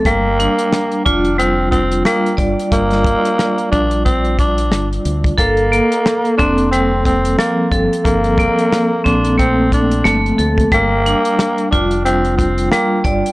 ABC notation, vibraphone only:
X:1
M:4/4
L:1/8
Q:"Swing 16ths" 1/4=90
K:Bb
V:1 name="Vibraphone"
G, D2 F G,2 G, d | z8 | A B,2 C G,2 F, A- | A B,2 C A,2 A, A |
G, D2 F G,2 G, d |]